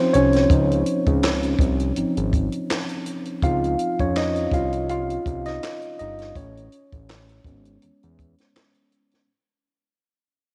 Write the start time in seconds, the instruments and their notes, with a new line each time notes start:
Already playing: tine electric piano F3 C4 C#4 D#4 C5 C#5
0.13 analog synth bass C2, tine electric piano C#4 C#5, closed hi-hat
0.33 snare, closed hi-hat
0.50 analog synth bass C#2, tine electric piano F3 D#4 C5, kick, closed hi-hat
0.71 closed hi-hat
0.86 closed hi-hat
1.06 analog synth bass C#2, kick, closed hi-hat
1.23 snare, clap, closed hi-hat
1.43 closed hi-hat
1.59 analog synth bass C2, kick, closed hi-hat
1.80 closed hi-hat
1.96 tine electric piano F3 C4 D#4, closed hi-hat
2.17 analog synth bass G#1, closed hi-hat
2.33 kick, closed hi-hat
2.52 closed hi-hat
2.70 snare, clap, closed hi-hat
2.89 closed hi-hat
3.06 closed hi-hat
3.25 closed hi-hat
3.42 analog synth bass C#2, tine electric piano F3 C4 D#4 F4 F5, kick, closed hi-hat
3.64 closed hi-hat
3.79 closed hi-hat
3.99 analog synth bass F2, tine electric piano C#4 C#5, kick, closed hi-hat
4.16 tine electric piano D#4 D#5, snare, clap, closed hi-hat
4.36 closed hi-hat
4.51 analog synth bass C2, tine electric piano F4 F5, kick, closed hi-hat
4.72 closed hi-hat
4.89 tine electric piano F4 F5, closed hi-hat
5.10 closed hi-hat
5.26 analog synth bass C2, kick, closed hi-hat
5.45 tine electric piano D#4 D#5, snare, closed hi-hat
5.63 snare, clap, closed hi-hat
5.82 closed hi-hat
5.99 analog synth bass G1, tine electric piano D#4 D#5, closed hi-hat
6.19 snare, closed hi-hat
6.36 analog synth bass A1, tine electric piano C#4 C#5, kick, closed hi-hat
6.57 closed hi-hat
6.72 closed hi-hat
6.92 analog synth bass A1, kick, closed hi-hat
7.09 snare, clap, closed hi-hat
7.29 closed hi-hat
7.44 analog synth bass G#1, tine electric piano G#3 B3 C#4, kick, closed hi-hat
7.65 closed hi-hat
7.82 analog synth bass E2, closed hi-hat
8.03 analog synth bass E2, closed hi-hat
8.19 kick, closed hi-hat
8.38 snare, closed hi-hat
8.56 snare, clap, closed hi-hat
8.75 closed hi-hat
8.92 closed hi-hat
9.11 snare, closed hi-hat